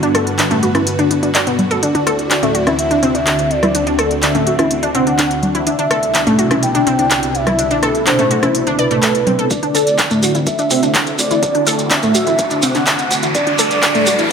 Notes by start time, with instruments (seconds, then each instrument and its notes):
Already playing: supersaw synth G2 D3 B3 F#4 B4
0.03 synth pluck D4, closed hi-hat
0.15 synth pluck A4, cross-stick, closed hi-hat
0.27 closed hi-hat
0.39 synth pluck D4, clap, closed hi-hat
0.51 synth pluck A3, closed hi-hat, high conga
0.63 synth pluck F#4, closed hi-hat
0.75 synth pluck E4, cross-stick, closed hi-hat, high conga
0.87 closed hi-hat
0.99 synth pluck D4, closed hi-hat
1.11 synth pluck D4, closed hi-hat
1.23 synth pluck D4, closed hi-hat
1.35 synth pluck D5, clap, closed hi-hat
1.47 synth pluck B3, closed hi-hat
1.59 closed hi-hat, low conga
1.71 synth pluck A4, closed hi-hat
1.83 supersaw synth D2 D3 C4 E4, synth pluck D4, soft synth lead D5, closed hi-hat
1.95 synth pluck D4, closed hi-hat
2.07 synth pluck A4, cross-stick, closed hi-hat
2.19 closed hi-hat
2.31 synth pluck D4, clap, closed hi-hat
2.43 synth pluck A3, closed hi-hat, high conga
2.55 synth pluck F#4, closed hi-hat
2.67 synth pluck E4, cross-stick, closed hi-hat, high conga
2.79 soft synth lead E5, closed hi-hat
2.91 synth pluck D4, closed hi-hat
3.03 synth pluck C4, closed hi-hat
3.15 synth pluck D4, closed hi-hat
3.27 synth pluck D4, clap, closed hi-hat
3.39 closed hi-hat
3.51 soft synth lead D5, closed hi-hat
3.63 synth pluck E4, cross-stick, closed hi-hat, low conga
3.75 supersaw synth D4, synth pluck D4, closed hi-hat
3.87 synth pluck D4, closed hi-hat
3.99 synth pluck A4, cross-stick, closed hi-hat
4.11 closed hi-hat
4.23 synth pluck D4, soft synth lead E5, clap, closed hi-hat
4.35 synth pluck A3, closed hi-hat, high conga
4.47 synth pluck F#4, closed hi-hat
4.59 synth pluck E4, cross-stick, closed hi-hat, high conga
4.71 closed hi-hat
4.83 synth pluck D4, closed hi-hat
4.95 synth pluck C4, soft synth lead F#5, closed hi-hat
5.07 synth pluck D4, closed hi-hat
5.19 synth pluck D4, clap, closed hi-hat
5.31 closed hi-hat
5.43 closed hi-hat, low conga
5.55 synth pluck E4, closed hi-hat
5.67 supersaw synth C2 B2 C3 E4, synth pluck D4, soft synth lead E5, closed hi-hat
5.79 synth pluck D4, closed hi-hat
5.91 synth pluck A4, cross-stick, closed hi-hat
6.03 closed hi-hat
6.15 synth pluck D4, clap, closed hi-hat
6.27 synth pluck A3, closed hi-hat, high conga
6.39 synth pluck F#4, closed hi-hat
6.51 synth pluck E4, cross-stick, closed hi-hat, high conga
6.63 soft synth lead G5, closed hi-hat
6.75 synth pluck D4, closed hi-hat
6.87 synth pluck C4, closed hi-hat
6.99 synth pluck D4, closed hi-hat
7.11 synth pluck D4, clap, closed hi-hat
7.23 closed hi-hat
7.35 soft synth lead E5, closed hi-hat
7.47 synth pluck E4, cross-stick, closed hi-hat, low conga
7.59 synth pluck D4, closed hi-hat
7.71 synth pluck D4, closed hi-hat
7.83 synth pluck A4, cross-stick, closed hi-hat
7.95 closed hi-hat
8.07 synth pluck D4, soft synth lead C5, clap, closed hi-hat
8.19 synth pluck A3, closed hi-hat, high conga
8.31 synth pluck F#4, closed hi-hat
8.43 synth pluck E4, cross-stick, closed hi-hat, high conga
8.55 closed hi-hat
8.67 synth pluck D4, closed hi-hat
8.79 soft synth lead B4, synth pluck D5, closed hi-hat
8.91 synth pluck A3, closed hi-hat
9.03 synth pluck A4, clap, closed hi-hat
9.15 closed hi-hat
9.27 synth pluck C4, closed hi-hat, low conga
9.39 synth pluck A4, closed hi-hat
9.51 supersaw synth D3 A3 C4 E4 F#4, synth pluck D4, soft synth lead D5, kick, closed hi-hat, riser, shekere
9.63 synth pluck D4, closed hi-hat
9.75 analog synth bass D2, synth pluck A4, open hi-hat, shekere
9.87 closed hi-hat, shekere
9.98 synth pluck D4, kick, clap, closed hi-hat, shekere
10.10 synth pluck A3, closed hi-hat, shekere
10.23 analog synth bass D2, synth pluck F#4, open hi-hat, shekere
10.35 analog synth bass D2, synth pluck E4, closed hi-hat, shekere
10.47 soft synth lead E5, kick, closed hi-hat, shekere
10.59 synth pluck D4, closed hi-hat, shekere
10.71 analog synth bass D2, synth pluck C4, open hi-hat, shekere
10.83 synth pluck D4, closed hi-hat, shekere
10.95 synth pluck D4, kick, clap, closed hi-hat, shekere
11.07 closed hi-hat, shekere
11.19 analog synth bass D2, soft synth lead D5, open hi-hat, shekere
11.31 synth pluck E4, closed hi-hat, shekere
11.43 synth pluck D4, kick, closed hi-hat, shekere
11.55 synth pluck D4, closed hi-hat
11.67 analog synth bass D2, synth pluck A4, open hi-hat, shekere
11.79 closed hi-hat, shekere
11.91 synth pluck D4, soft synth lead E5, kick, clap, closed hi-hat, shekere
12.02 synth pluck A3, closed hi-hat, shekere
12.15 analog synth bass D2, synth pluck F#4, open hi-hat, shekere
12.27 analog synth bass D2, synth pluck E4, closed hi-hat, shekere
12.39 kick, closed hi-hat, shekere
12.50 synth pluck D4, closed hi-hat, shekere
12.63 analog synth bass D2, synth pluck C4, soft synth lead F#5, open hi-hat, shekere
12.75 synth pluck D4, clap, closed hi-hat, shekere
12.86 synth pluck D4, kick, clap, closed hi-hat, shekere
12.99 closed hi-hat, shekere
13.11 analog synth bass D2, open hi-hat, shekere
13.23 synth pluck E4, closed hi-hat, shekere
13.35 supersaw synth G3 D4 A4 B4, synth pluck D4, soft synth lead D5, kick, closed hi-hat, shekere
13.47 synth pluck D4, closed hi-hat
13.58 analog synth bass G1, synth pluck A4, open hi-hat, shekere
13.71 closed hi-hat, shekere
13.83 synth pluck D4, kick, clap, closed hi-hat, shekere
13.94 synth pluck A3, closed hi-hat, shekere
14.06 analog synth bass G1, synth pluck F#4, open hi-hat, shekere
14.19 analog synth bass G1, synth pluck E4, closed hi-hat, shekere